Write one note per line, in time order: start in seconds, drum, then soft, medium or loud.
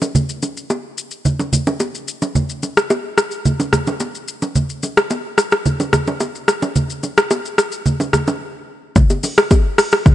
0.02 low bongo medium
0.02 shaker medium
0.15 low conga medium
0.15 shaker medium
0.29 shaker medium
0.42 low bongo medium
0.42 shaker medium
0.57 shaker medium
0.70 high bongo medium
0.70 shaker medium
0.98 shaker medium
1.11 shaker soft
1.25 low conga medium
1.25 shaker medium
1.39 low bongo medium
1.39 shaker soft
1.53 low conga medium
1.53 shaker loud
1.67 low bongo medium
1.67 shaker soft
1.80 high bongo medium
1.80 shaker medium
1.95 shaker medium
2.08 shaker medium
2.22 low bongo medium
2.22 shaker medium
2.35 low conga medium
2.35 shaker medium
2.49 shaker medium
2.63 low bongo medium
2.63 shaker medium
2.77 cross-stick medium
2.77 shaker medium
2.90 high bongo medium
2.90 shaker medium
3.18 cross-stick medium
3.18 shaker medium
3.31 shaker soft
3.45 low conga medium
3.45 shaker medium
3.60 low bongo medium
3.60 shaker medium
3.73 cross-stick medium
3.73 low conga medium
3.73 shaker loud
3.87 low bongo medium
3.87 shaker soft
4.00 high bongo medium
4.00 shaker medium
4.15 shaker medium
4.28 shaker medium
4.42 low bongo medium
4.42 shaker medium
4.55 low conga medium
4.55 shaker medium
4.70 shaker medium
4.83 low bongo soft
4.83 shaker medium
4.97 cross-stick loud
4.97 shaker medium
5.10 high bongo medium
5.10 shaker medium
5.38 cross-stick medium
5.38 shaker medium
5.52 cross-stick medium
5.52 shaker soft
5.66 low conga medium
5.66 shaker medium
5.80 low bongo medium
5.80 shaker soft
5.93 cross-stick medium
5.93 low conga medium
5.93 shaker medium
6.07 low bongo medium
6.07 shaker soft
6.20 high bongo medium
6.20 shaker medium
6.35 shaker medium
6.48 cross-stick medium
6.48 shaker medium
6.62 low bongo medium
6.62 shaker medium
6.76 low conga medium
6.76 shaker medium
6.90 shaker medium
7.03 low bongo medium
7.03 shaker medium
7.18 cross-stick loud
7.18 shaker medium
7.31 high bongo medium
7.31 shaker medium
7.46 shaker medium
7.58 cross-stick medium
7.58 shaker medium
7.72 shaker soft
7.86 low conga medium
7.86 shaker medium
8.00 low bongo medium
8.00 shaker soft
8.13 cross-stick medium
8.13 low conga medium
8.13 shaker loud
8.27 low bongo medium
8.27 shaker soft
8.96 kick loud
8.96 low conga medium
8.96 shaker medium
9.10 high bongo medium
9.10 shaker medium
9.23 open hi-hat soft
9.23 low bongo medium
9.23 shaker medium
9.38 cross-stick loud
9.38 shaker medium
9.51 kick loud
9.51 high bongo medium
9.51 shaker medium
9.78 cross-stick medium
9.78 open hi-hat medium
9.78 shaker loud
9.92 cross-stick medium
9.92 shaker medium
10.06 kick loud
10.06 low conga medium
10.06 shaker medium